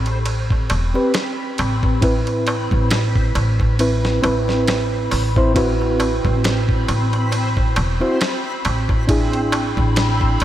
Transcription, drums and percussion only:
0.06 ride soft
0.06 darbuka tek soft
0.26 ride medium
0.26 darbuka tek soft
0.50 kick medium
0.50 darbuka tek soft
0.70 ride medium
0.70 darbuka tek medium
0.95 darbuka tek soft
1.14 snare loud
1.14 ride medium
1.14 darbuka tek soft
1.58 ride medium
1.58 darbuka tek medium
1.83 kick medium
1.83 darbuka tek soft
2.02 kick loud
2.02 ride medium
2.02 darbuka tek soft
2.27 ride soft
2.27 darbuka tek soft
2.47 ride medium
2.47 darbuka tek medium
2.71 kick medium
2.71 darbuka tek soft
2.91 snare loud
2.91 ride medium
2.91 darbuka tek soft
3.16 kick medium
3.35 ride medium
3.35 darbuka tek medium
3.60 kick medium
3.60 darbuka tek soft
3.79 ride medium
3.79 darbuka tek medium
4.05 snare soft
4.05 darbuka tek soft
4.24 ride medium
4.24 darbuka tek medium
4.48 snare soft
4.48 darbuka tek soft
4.67 snare loud
4.67 ride medium
4.67 darbuka tek medium
5.11 open hi-hat medium
5.11 darbuka tek medium
5.36 kick medium
5.36 darbuka tek soft
5.56 kick loud
5.56 ride medium
5.56 darbuka tek medium
5.81 darbuka tek soft
6.00 ride medium
6.00 darbuka tek medium
6.25 kick medium
6.25 darbuka tek soft
6.44 snare loud
6.44 ride medium
6.44 darbuka tek soft
6.69 kick medium
6.88 ride medium
6.88 darbuka tek medium
7.13 ride soft
7.13 darbuka tek soft
7.32 ride medium
7.32 darbuka tek medium
7.57 kick medium
7.57 darbuka tek soft
7.76 ride medium
7.76 darbuka tek medium
8.01 darbuka tek soft
8.21 snare loud
8.21 ride medium
8.21 darbuka tek soft
8.65 ride medium
8.65 darbuka tek medium
8.89 kick medium
8.89 darbuka tek soft
9.09 kick loud
9.09 ride medium
9.09 darbuka tek medium
9.33 ride soft
9.33 darbuka tek soft
9.52 ride medium
9.52 darbuka tek medium
9.77 kick medium
9.77 darbuka tek soft
9.96 snare loud
9.96 ride medium
9.96 darbuka tek soft
10.21 kick medium
10.40 ride medium

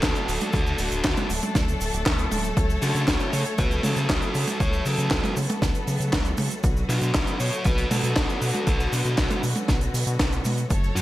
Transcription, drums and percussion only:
0.02 kick loud
0.02 snare loud
0.02 clap loud
0.02 closed hi-hat medium
0.02 cabasa medium
0.15 closed hi-hat medium
0.15 cabasa soft
0.28 open hi-hat loud
0.28 cabasa medium
0.41 closed hi-hat medium
0.41 high tom medium
0.41 cabasa soft
0.53 kick loud
0.53 closed hi-hat medium
0.53 cabasa soft
0.67 cabasa soft
0.78 open hi-hat loud
0.78 cabasa medium
0.92 closed hi-hat medium
0.92 cabasa soft
1.04 kick loud
1.04 snare loud
1.04 clap loud
1.04 closed hi-hat medium
1.04 cabasa medium
1.17 closed hi-hat medium
1.17 high tom medium
1.17 cabasa soft
1.30 open hi-hat loud
1.30 cabasa medium
1.43 closed hi-hat medium
1.43 high tom medium
1.43 cabasa soft
1.55 kick loud
1.55 snare medium
1.55 closed hi-hat medium
1.55 cabasa medium
1.68 closed hi-hat soft
1.68 cabasa soft
1.81 open hi-hat loud
1.81 cabasa medium
1.93 closed hi-hat medium
1.93 cabasa soft
2.06 kick loud
2.06 snare loud
2.06 clap loud
2.06 closed hi-hat medium
2.06 cabasa medium
2.18 closed hi-hat medium
2.18 cabasa soft
2.32 open hi-hat loud
2.32 high tom medium
2.32 cabasa medium
2.44 closed hi-hat medium
2.44 cabasa soft
2.57 kick loud
2.57 closed hi-hat medium
2.57 cabasa medium
2.70 cabasa soft
2.82 open hi-hat loud
2.82 cabasa medium
2.96 closed hi-hat medium
2.96 cabasa soft
3.08 kick loud
3.08 snare loud
3.08 clap loud
3.08 closed hi-hat medium
3.08 cabasa medium
3.20 closed hi-hat soft
3.20 cabasa soft
3.33 open hi-hat loud
3.33 cabasa medium
3.45 closed hi-hat medium
3.45 cabasa soft
3.58 kick loud
3.58 closed hi-hat medium
3.58 cabasa medium
3.71 closed hi-hat medium
3.71 cabasa soft
3.83 open hi-hat loud
3.83 high tom medium
3.83 cabasa medium
3.96 closed hi-hat medium
3.96 cabasa medium
4.09 kick loud
4.09 snare loud
4.09 clap loud
4.09 closed hi-hat medium
4.09 cabasa medium
4.22 closed hi-hat medium
4.22 cabasa soft
4.35 open hi-hat loud
4.35 cabasa medium
4.47 closed hi-hat medium
4.47 high tom medium
4.47 cabasa medium
4.60 kick loud
4.60 closed hi-hat medium
4.60 cabasa medium
4.73 cabasa soft
4.85 open hi-hat loud
4.85 cabasa medium
4.99 closed hi-hat medium
4.99 cabasa soft
5.11 kick loud
5.11 snare loud
5.11 clap loud
5.11 closed hi-hat medium
5.11 cabasa medium
5.24 closed hi-hat medium
5.24 high tom medium
5.24 cabasa soft
5.36 open hi-hat loud
5.36 cabasa medium
5.50 closed hi-hat medium
5.50 high tom medium
5.50 cabasa medium
5.62 kick loud
5.62 snare medium
5.62 closed hi-hat medium
5.62 cabasa medium
5.75 closed hi-hat medium
5.75 cabasa soft
5.87 open hi-hat loud
5.87 cabasa medium
6.01 closed hi-hat medium
6.01 cabasa medium
6.13 kick loud
6.13 snare loud
6.13 clap loud
6.13 closed hi-hat medium
6.13 cabasa medium
6.25 closed hi-hat medium
6.25 cabasa soft
6.37 open hi-hat loud
6.37 high tom medium
6.37 cabasa medium
6.50 closed hi-hat medium
6.50 cabasa medium
6.63 kick loud
6.63 closed hi-hat medium
6.63 cabasa medium
6.77 cabasa soft
6.90 open hi-hat loud
6.90 cabasa medium
7.02 closed hi-hat medium
7.02 cabasa soft
7.14 kick loud
7.14 snare loud
7.14 clap loud
7.14 closed hi-hat medium
7.14 cabasa medium
7.27 closed hi-hat medium
7.27 cabasa soft
7.40 open hi-hat loud
7.40 cabasa medium
7.53 closed hi-hat medium
7.53 cabasa soft
7.64 kick loud
7.64 closed hi-hat medium
7.64 cabasa medium
7.78 closed hi-hat medium
7.78 cabasa soft
7.91 open hi-hat loud
7.91 high tom medium
7.91 cabasa medium
8.04 closed hi-hat medium
8.04 cabasa soft
8.16 kick loud
8.16 snare loud
8.16 clap loud
8.16 closed hi-hat medium
8.16 cabasa medium
8.29 closed hi-hat medium
8.29 cabasa soft
8.42 open hi-hat loud
8.42 cabasa medium
8.54 closed hi-hat medium
8.54 high tom medium
8.54 cabasa soft
8.67 kick loud
8.67 closed hi-hat medium
8.67 cabasa medium
8.80 cabasa soft
8.93 open hi-hat loud
8.93 cabasa medium
9.04 closed hi-hat medium
9.04 cabasa medium
9.17 kick loud
9.17 snare loud
9.17 clap loud
9.17 closed hi-hat medium
9.17 cabasa medium
9.30 closed hi-hat medium
9.30 high tom medium
9.30 cabasa soft
9.43 open hi-hat loud
9.43 cabasa medium
9.56 closed hi-hat medium
9.56 high tom medium
9.56 cabasa soft
9.68 kick loud
9.68 snare medium
9.68 closed hi-hat medium
9.68 cabasa medium
9.81 closed hi-hat medium
9.81 cabasa soft
9.94 open hi-hat loud
9.94 cabasa medium
10.07 closed hi-hat medium
10.07 cabasa medium
10.19 kick loud
10.19 snare loud
10.19 clap loud
10.19 closed hi-hat loud
10.19 cabasa medium
10.33 closed hi-hat medium
10.33 cabasa soft
10.45 open hi-hat loud
10.45 high tom medium
10.45 cabasa medium
10.58 closed hi-hat medium
10.58 cabasa soft
10.70 kick loud
10.70 closed hi-hat loud
10.70 cabasa medium
10.84 cabasa soft
10.96 open hi-hat loud
10.96 cabasa medium

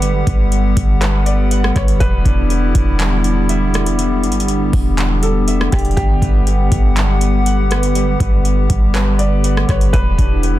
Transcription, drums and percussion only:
0.02 closed hi-hat medium
0.27 kick medium
0.27 closed hi-hat medium
0.52 closed hi-hat medium
0.77 kick loud
0.77 closed hi-hat medium
1.01 clap loud
1.01 closed hi-hat medium
1.26 closed hi-hat medium
1.51 closed hi-hat medium
1.64 cross-stick loud
1.76 kick medium
1.76 cross-stick loud
1.76 closed hi-hat soft
1.88 closed hi-hat medium
2.00 kick loud
2.00 closed hi-hat medium
2.25 kick loud
2.25 closed hi-hat medium
2.50 closed hi-hat medium
2.75 kick medium
2.75 closed hi-hat medium
3.00 clap loud
3.00 closed hi-hat medium
3.24 closed hi-hat medium
3.49 closed hi-hat medium
3.74 cross-stick loud
3.74 closed hi-hat soft
3.86 closed hi-hat medium
3.99 closed hi-hat medium
4.24 closed hi-hat soft
4.32 closed hi-hat medium
4.40 closed hi-hat medium
4.48 closed hi-hat medium
4.73 kick medium
4.73 open hi-hat medium
4.98 clap loud
4.98 closed hi-hat medium
5.23 closed hi-hat medium
5.48 closed hi-hat medium
5.61 cross-stick loud
5.72 kick loud
5.72 cross-stick loud
5.72 closed hi-hat medium
5.79 closed hi-hat medium
5.85 closed hi-hat medium
5.91 closed hi-hat medium
5.97 kick loud
5.97 closed hi-hat medium
6.22 kick loud
6.22 closed hi-hat medium
6.47 closed hi-hat medium
6.72 kick loud
6.72 closed hi-hat medium
6.96 clap loud
6.96 closed hi-hat medium
7.21 closed hi-hat medium
7.46 closed hi-hat medium
7.71 cross-stick loud
7.71 closed hi-hat soft
7.83 closed hi-hat medium
7.95 closed hi-hat medium
8.20 kick medium
8.20 closed hi-hat medium
8.45 closed hi-hat medium
8.70 kick loud
8.70 closed hi-hat medium
8.95 clap loud
8.95 closed hi-hat medium
9.19 closed hi-hat medium
9.44 closed hi-hat medium
9.57 cross-stick loud
9.69 kick medium
9.69 cross-stick loud
9.69 closed hi-hat soft
9.81 closed hi-hat medium
9.94 kick loud
9.94 closed hi-hat medium
10.18 kick medium
10.18 closed hi-hat medium
10.43 closed hi-hat medium

